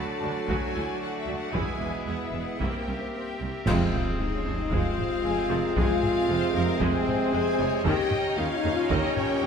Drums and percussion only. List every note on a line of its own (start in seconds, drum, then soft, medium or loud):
0.49 taiko medium
1.54 taiko medium
2.60 taiko medium
3.67 concert bass drum medium
3.67 taiko loud
3.67 crash medium
3.94 taiko low-mid soft
4.72 taiko medium
4.98 taiko low-mid medium
5.76 taiko loud
6.03 taiko low-mid medium
6.81 taiko medium
7.08 taiko low-mid medium
7.86 taiko medium
8.11 taiko low-mid soft
8.90 taiko medium
9.17 taiko low-mid medium